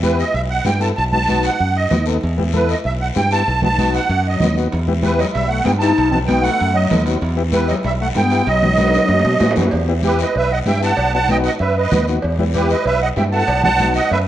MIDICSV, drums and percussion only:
0, 0, Header, 1, 2, 480
1, 0, Start_track
1, 0, Key_signature, 1, "minor"
1, 0, Tempo, 312826
1, 1490, Time_signature, 4, 2, 24, 8
1, 21910, End_track
2, 0, Start_track
2, 0, Title_t, "Drums"
2, 43, Note_on_c, 9, 73, 66
2, 44, Note_on_c, 9, 63, 75
2, 197, Note_off_c, 9, 73, 0
2, 198, Note_off_c, 9, 63, 0
2, 288, Note_on_c, 9, 73, 72
2, 441, Note_off_c, 9, 73, 0
2, 534, Note_on_c, 9, 74, 75
2, 688, Note_off_c, 9, 74, 0
2, 997, Note_on_c, 9, 63, 81
2, 1004, Note_on_c, 9, 73, 67
2, 1150, Note_off_c, 9, 63, 0
2, 1158, Note_off_c, 9, 73, 0
2, 1244, Note_on_c, 9, 73, 62
2, 1398, Note_off_c, 9, 73, 0
2, 1475, Note_on_c, 9, 74, 67
2, 1628, Note_off_c, 9, 74, 0
2, 1730, Note_on_c, 9, 63, 69
2, 1883, Note_off_c, 9, 63, 0
2, 1956, Note_on_c, 9, 73, 71
2, 1970, Note_on_c, 9, 63, 79
2, 2109, Note_off_c, 9, 73, 0
2, 2123, Note_off_c, 9, 63, 0
2, 2194, Note_on_c, 9, 73, 69
2, 2348, Note_off_c, 9, 73, 0
2, 2433, Note_on_c, 9, 74, 74
2, 2586, Note_off_c, 9, 74, 0
2, 2915, Note_on_c, 9, 73, 62
2, 2932, Note_on_c, 9, 63, 73
2, 2932, Note_on_c, 9, 64, 81
2, 3068, Note_off_c, 9, 73, 0
2, 3086, Note_off_c, 9, 63, 0
2, 3086, Note_off_c, 9, 64, 0
2, 3157, Note_on_c, 9, 73, 62
2, 3310, Note_off_c, 9, 73, 0
2, 3389, Note_on_c, 9, 74, 64
2, 3543, Note_off_c, 9, 74, 0
2, 3663, Note_on_c, 9, 63, 70
2, 3816, Note_off_c, 9, 63, 0
2, 3868, Note_on_c, 9, 73, 69
2, 3896, Note_on_c, 9, 63, 78
2, 4022, Note_off_c, 9, 73, 0
2, 4050, Note_off_c, 9, 63, 0
2, 4128, Note_on_c, 9, 73, 69
2, 4281, Note_off_c, 9, 73, 0
2, 4358, Note_on_c, 9, 74, 68
2, 4511, Note_off_c, 9, 74, 0
2, 4834, Note_on_c, 9, 73, 65
2, 4856, Note_on_c, 9, 63, 76
2, 4987, Note_off_c, 9, 73, 0
2, 5010, Note_off_c, 9, 63, 0
2, 5081, Note_on_c, 9, 73, 62
2, 5235, Note_off_c, 9, 73, 0
2, 5329, Note_on_c, 9, 74, 66
2, 5482, Note_off_c, 9, 74, 0
2, 5560, Note_on_c, 9, 63, 74
2, 5560, Note_on_c, 9, 64, 69
2, 5713, Note_off_c, 9, 63, 0
2, 5713, Note_off_c, 9, 64, 0
2, 5809, Note_on_c, 9, 63, 81
2, 5814, Note_on_c, 9, 73, 71
2, 5963, Note_off_c, 9, 63, 0
2, 5968, Note_off_c, 9, 73, 0
2, 6043, Note_on_c, 9, 73, 69
2, 6197, Note_off_c, 9, 73, 0
2, 6293, Note_on_c, 9, 74, 73
2, 6447, Note_off_c, 9, 74, 0
2, 6755, Note_on_c, 9, 63, 78
2, 6755, Note_on_c, 9, 64, 76
2, 6780, Note_on_c, 9, 73, 65
2, 6908, Note_off_c, 9, 63, 0
2, 6908, Note_off_c, 9, 64, 0
2, 6933, Note_off_c, 9, 73, 0
2, 7008, Note_on_c, 9, 73, 64
2, 7162, Note_off_c, 9, 73, 0
2, 7246, Note_on_c, 9, 65, 67
2, 7250, Note_on_c, 9, 74, 67
2, 7399, Note_off_c, 9, 65, 0
2, 7403, Note_off_c, 9, 74, 0
2, 7486, Note_on_c, 9, 63, 67
2, 7640, Note_off_c, 9, 63, 0
2, 7713, Note_on_c, 9, 63, 80
2, 7721, Note_on_c, 9, 65, 66
2, 7744, Note_on_c, 9, 73, 68
2, 7866, Note_off_c, 9, 63, 0
2, 7875, Note_off_c, 9, 65, 0
2, 7898, Note_off_c, 9, 73, 0
2, 7966, Note_on_c, 9, 65, 64
2, 7980, Note_on_c, 9, 73, 70
2, 8119, Note_off_c, 9, 65, 0
2, 8134, Note_off_c, 9, 73, 0
2, 8206, Note_on_c, 9, 65, 58
2, 8208, Note_on_c, 9, 74, 68
2, 8359, Note_off_c, 9, 65, 0
2, 8362, Note_off_c, 9, 74, 0
2, 8676, Note_on_c, 9, 63, 80
2, 8681, Note_on_c, 9, 65, 65
2, 8701, Note_on_c, 9, 73, 71
2, 8830, Note_off_c, 9, 63, 0
2, 8835, Note_off_c, 9, 65, 0
2, 8855, Note_off_c, 9, 73, 0
2, 8926, Note_on_c, 9, 73, 65
2, 8927, Note_on_c, 9, 65, 66
2, 9079, Note_off_c, 9, 73, 0
2, 9080, Note_off_c, 9, 65, 0
2, 9174, Note_on_c, 9, 65, 70
2, 9183, Note_on_c, 9, 74, 60
2, 9328, Note_off_c, 9, 65, 0
2, 9336, Note_off_c, 9, 74, 0
2, 9404, Note_on_c, 9, 64, 65
2, 9558, Note_off_c, 9, 64, 0
2, 9643, Note_on_c, 9, 63, 82
2, 9647, Note_on_c, 9, 65, 71
2, 9652, Note_on_c, 9, 73, 67
2, 9796, Note_off_c, 9, 63, 0
2, 9801, Note_off_c, 9, 65, 0
2, 9806, Note_off_c, 9, 73, 0
2, 9890, Note_on_c, 9, 65, 64
2, 9890, Note_on_c, 9, 73, 70
2, 10043, Note_off_c, 9, 65, 0
2, 10044, Note_off_c, 9, 73, 0
2, 10131, Note_on_c, 9, 74, 77
2, 10133, Note_on_c, 9, 65, 63
2, 10285, Note_off_c, 9, 74, 0
2, 10287, Note_off_c, 9, 65, 0
2, 10602, Note_on_c, 9, 73, 73
2, 10603, Note_on_c, 9, 65, 70
2, 10606, Note_on_c, 9, 63, 75
2, 10606, Note_on_c, 9, 64, 79
2, 10755, Note_off_c, 9, 73, 0
2, 10757, Note_off_c, 9, 65, 0
2, 10760, Note_off_c, 9, 63, 0
2, 10760, Note_off_c, 9, 64, 0
2, 10832, Note_on_c, 9, 65, 69
2, 10846, Note_on_c, 9, 73, 58
2, 10985, Note_off_c, 9, 65, 0
2, 10999, Note_off_c, 9, 73, 0
2, 11073, Note_on_c, 9, 74, 67
2, 11087, Note_on_c, 9, 65, 66
2, 11226, Note_off_c, 9, 74, 0
2, 11240, Note_off_c, 9, 65, 0
2, 11542, Note_on_c, 9, 73, 75
2, 11549, Note_on_c, 9, 63, 84
2, 11572, Note_on_c, 9, 65, 64
2, 11695, Note_off_c, 9, 73, 0
2, 11703, Note_off_c, 9, 63, 0
2, 11726, Note_off_c, 9, 65, 0
2, 11786, Note_on_c, 9, 73, 72
2, 11804, Note_on_c, 9, 65, 63
2, 11940, Note_off_c, 9, 73, 0
2, 11957, Note_off_c, 9, 65, 0
2, 12016, Note_on_c, 9, 74, 75
2, 12036, Note_on_c, 9, 65, 66
2, 12169, Note_off_c, 9, 74, 0
2, 12190, Note_off_c, 9, 65, 0
2, 12503, Note_on_c, 9, 65, 61
2, 12506, Note_on_c, 9, 73, 71
2, 12521, Note_on_c, 9, 63, 80
2, 12657, Note_off_c, 9, 65, 0
2, 12659, Note_off_c, 9, 73, 0
2, 12675, Note_off_c, 9, 63, 0
2, 12741, Note_on_c, 9, 73, 64
2, 12757, Note_on_c, 9, 65, 63
2, 12894, Note_off_c, 9, 73, 0
2, 12911, Note_off_c, 9, 65, 0
2, 12987, Note_on_c, 9, 74, 66
2, 12997, Note_on_c, 9, 65, 66
2, 13140, Note_off_c, 9, 74, 0
2, 13150, Note_off_c, 9, 65, 0
2, 13240, Note_on_c, 9, 63, 69
2, 13240, Note_on_c, 9, 64, 67
2, 13394, Note_off_c, 9, 63, 0
2, 13394, Note_off_c, 9, 64, 0
2, 13452, Note_on_c, 9, 73, 69
2, 13469, Note_on_c, 9, 65, 82
2, 13478, Note_on_c, 9, 63, 81
2, 13606, Note_off_c, 9, 73, 0
2, 13621, Note_off_c, 9, 65, 0
2, 13621, Note_on_c, 9, 65, 89
2, 13631, Note_off_c, 9, 63, 0
2, 13709, Note_on_c, 9, 73, 76
2, 13775, Note_off_c, 9, 65, 0
2, 13782, Note_on_c, 9, 65, 80
2, 13863, Note_off_c, 9, 73, 0
2, 13935, Note_off_c, 9, 65, 0
2, 13937, Note_on_c, 9, 66, 86
2, 13943, Note_on_c, 9, 74, 68
2, 14090, Note_off_c, 9, 66, 0
2, 14096, Note_off_c, 9, 74, 0
2, 14111, Note_on_c, 9, 66, 96
2, 14192, Note_on_c, 9, 63, 87
2, 14264, Note_off_c, 9, 66, 0
2, 14345, Note_off_c, 9, 63, 0
2, 14426, Note_on_c, 9, 66, 85
2, 14427, Note_on_c, 9, 73, 65
2, 14436, Note_on_c, 9, 63, 88
2, 14580, Note_off_c, 9, 66, 0
2, 14580, Note_off_c, 9, 73, 0
2, 14589, Note_off_c, 9, 63, 0
2, 14589, Note_on_c, 9, 66, 91
2, 14669, Note_on_c, 9, 73, 62
2, 14682, Note_on_c, 9, 64, 72
2, 14742, Note_off_c, 9, 66, 0
2, 14754, Note_on_c, 9, 66, 84
2, 14822, Note_off_c, 9, 73, 0
2, 14835, Note_off_c, 9, 64, 0
2, 14902, Note_on_c, 9, 56, 96
2, 14907, Note_off_c, 9, 66, 0
2, 14916, Note_on_c, 9, 74, 64
2, 15055, Note_off_c, 9, 56, 0
2, 15070, Note_off_c, 9, 74, 0
2, 15388, Note_on_c, 9, 63, 77
2, 15388, Note_on_c, 9, 73, 72
2, 15393, Note_on_c, 9, 56, 70
2, 15541, Note_off_c, 9, 63, 0
2, 15542, Note_off_c, 9, 73, 0
2, 15547, Note_off_c, 9, 56, 0
2, 15633, Note_on_c, 9, 73, 69
2, 15786, Note_off_c, 9, 73, 0
2, 15865, Note_on_c, 9, 74, 73
2, 15876, Note_on_c, 9, 56, 73
2, 16019, Note_off_c, 9, 74, 0
2, 16029, Note_off_c, 9, 56, 0
2, 16354, Note_on_c, 9, 63, 78
2, 16356, Note_on_c, 9, 56, 63
2, 16365, Note_on_c, 9, 73, 68
2, 16507, Note_off_c, 9, 63, 0
2, 16509, Note_off_c, 9, 56, 0
2, 16518, Note_off_c, 9, 73, 0
2, 16612, Note_on_c, 9, 73, 68
2, 16765, Note_off_c, 9, 73, 0
2, 16833, Note_on_c, 9, 56, 98
2, 16840, Note_on_c, 9, 74, 64
2, 16986, Note_off_c, 9, 56, 0
2, 16994, Note_off_c, 9, 74, 0
2, 17316, Note_on_c, 9, 73, 71
2, 17324, Note_on_c, 9, 63, 79
2, 17326, Note_on_c, 9, 56, 69
2, 17470, Note_off_c, 9, 73, 0
2, 17477, Note_off_c, 9, 63, 0
2, 17479, Note_off_c, 9, 56, 0
2, 17554, Note_on_c, 9, 73, 67
2, 17708, Note_off_c, 9, 73, 0
2, 17790, Note_on_c, 9, 74, 78
2, 17805, Note_on_c, 9, 56, 76
2, 17944, Note_off_c, 9, 74, 0
2, 17959, Note_off_c, 9, 56, 0
2, 18275, Note_on_c, 9, 56, 67
2, 18285, Note_on_c, 9, 73, 72
2, 18292, Note_on_c, 9, 63, 81
2, 18292, Note_on_c, 9, 64, 79
2, 18428, Note_off_c, 9, 56, 0
2, 18439, Note_off_c, 9, 73, 0
2, 18445, Note_off_c, 9, 63, 0
2, 18445, Note_off_c, 9, 64, 0
2, 18527, Note_on_c, 9, 73, 66
2, 18681, Note_off_c, 9, 73, 0
2, 18754, Note_on_c, 9, 56, 101
2, 18755, Note_on_c, 9, 74, 72
2, 18907, Note_off_c, 9, 56, 0
2, 18909, Note_off_c, 9, 74, 0
2, 19008, Note_on_c, 9, 63, 71
2, 19161, Note_off_c, 9, 63, 0
2, 19235, Note_on_c, 9, 73, 71
2, 19239, Note_on_c, 9, 56, 75
2, 19254, Note_on_c, 9, 63, 80
2, 19388, Note_off_c, 9, 73, 0
2, 19392, Note_off_c, 9, 56, 0
2, 19407, Note_off_c, 9, 63, 0
2, 19472, Note_on_c, 9, 73, 77
2, 19625, Note_off_c, 9, 73, 0
2, 19703, Note_on_c, 9, 74, 72
2, 19724, Note_on_c, 9, 56, 73
2, 19856, Note_off_c, 9, 74, 0
2, 19878, Note_off_c, 9, 56, 0
2, 20192, Note_on_c, 9, 73, 69
2, 20206, Note_on_c, 9, 56, 69
2, 20206, Note_on_c, 9, 63, 86
2, 20206, Note_on_c, 9, 66, 65
2, 20346, Note_off_c, 9, 73, 0
2, 20359, Note_off_c, 9, 56, 0
2, 20359, Note_off_c, 9, 66, 0
2, 20360, Note_off_c, 9, 63, 0
2, 20444, Note_on_c, 9, 73, 63
2, 20597, Note_off_c, 9, 73, 0
2, 20669, Note_on_c, 9, 74, 69
2, 20675, Note_on_c, 9, 56, 102
2, 20822, Note_off_c, 9, 74, 0
2, 20829, Note_off_c, 9, 56, 0
2, 20919, Note_on_c, 9, 63, 69
2, 20919, Note_on_c, 9, 64, 72
2, 21073, Note_off_c, 9, 63, 0
2, 21073, Note_off_c, 9, 64, 0
2, 21149, Note_on_c, 9, 73, 70
2, 21165, Note_on_c, 9, 56, 70
2, 21173, Note_on_c, 9, 63, 79
2, 21302, Note_off_c, 9, 73, 0
2, 21318, Note_off_c, 9, 56, 0
2, 21326, Note_off_c, 9, 63, 0
2, 21388, Note_on_c, 9, 73, 75
2, 21541, Note_off_c, 9, 73, 0
2, 21624, Note_on_c, 9, 74, 72
2, 21632, Note_on_c, 9, 56, 74
2, 21777, Note_off_c, 9, 74, 0
2, 21786, Note_off_c, 9, 56, 0
2, 21910, End_track
0, 0, End_of_file